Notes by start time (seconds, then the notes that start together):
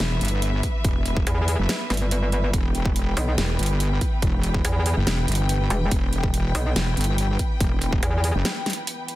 Already playing: E3 B3 B4 E5
0.00 E1, snare, closed hi-hat
0.21 G1, closed hi-hat
0.25 closed hi-hat
0.28 closed hi-hat
0.42 closed hi-hat
0.63 kick, closed hi-hat
0.84 E1, kick, closed hi-hat
1.06 closed hi-hat
1.17 kick
1.27 E2, closed hi-hat
1.48 open hi-hat
1.59 F#1
1.69 snare, closed hi-hat
1.90 G1, snare, closed hi-hat
1.94 closed hi-hat
1.97 closed hi-hat
2.11 closed hi-hat
2.32 closed hi-hat
2.53 E1 G5, kick, closed hi-hat
2.75 closed hi-hat
2.85 kick
2.96 closed hi-hat
3.17 B1, open hi-hat
3.38 E1, snare, closed hi-hat
3.59 G1, closed hi-hat
3.63 closed hi-hat
3.66 closed hi-hat
3.80 closed hi-hat
4.01 kick, closed hi-hat
4.22 E1, kick, closed hi-hat
4.43 closed hi-hat
4.54 kick
4.65 E2, closed hi-hat
4.86 open hi-hat
4.97 F#1
5.07 E1, snare, closed hi-hat
5.28 G1, closed hi-hat
5.32 closed hi-hat
5.35 closed hi-hat
5.49 closed hi-hat
5.70 E1, closed hi-hat
5.91 E1, kick, closed hi-hat
6.13 closed hi-hat
6.24 kick
6.34 closed hi-hat
6.55 B1, open hi-hat
6.76 E1, snare, closed hi-hat
6.97 G1, closed hi-hat
7.01 closed hi-hat
7.04 closed hi-hat
7.18 closed hi-hat
7.39 kick, closed hi-hat
7.60 E1, kick, closed hi-hat
7.82 closed hi-hat
7.93 kick
8.03 E2, closed hi-hat
8.24 open hi-hat
8.35 F#1
8.45 snare, closed hi-hat
8.66 snare, closed hi-hat
8.70 closed hi-hat
8.73 closed hi-hat
8.87 closed hi-hat
9.08 closed hi-hat